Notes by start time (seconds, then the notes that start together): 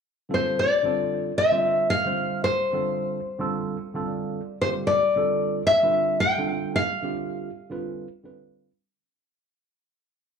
0.29 D3 G3 C4 F4 A4
0.34 C5
0.59 D5
0.83 D3 G3 C4 F4 A4
1.38 E5
1.50 D3 G3 C4 F4 C5
1.90 F5
2.05 D3 G3 C4 F4 C5
2.44 C5
2.72 D3 G3 C4 F4 A4
3.39 D3 G3 C4 F4 A4
3.94 D3 G3 C4 F4 A4
4.08 D5
4.61 D3 G3 C4 F4 G4 C5
4.87 D5
5.16 D3 G3 C4 F4 A4
5.67 E5
5.82 D3 G3 C4 F4 B4
6.20 G5
6.37 D3 G3 C4 F4 A4
6.76 F5
7.02 D3 G3 C4 F4 G4
7.70 D3 G3 C4 F4 B4
8.23 D3 G3 C4 F4 B4